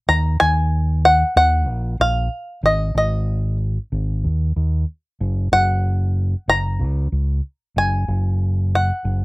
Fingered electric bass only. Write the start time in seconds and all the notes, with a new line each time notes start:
0.08 D#2
0.41 D#2
1.36 D#2
1.68 A#1
2.00 A#1
2.63 G#1
2.95 G#1
3.92 G#1
4.24 D#2
4.56 D#2
5.21 F#1
5.52 F#1
6.48 F#1
6.79 C#2
7.12 C#2
7.76 F#1
8.08 F#1
9.05 F#1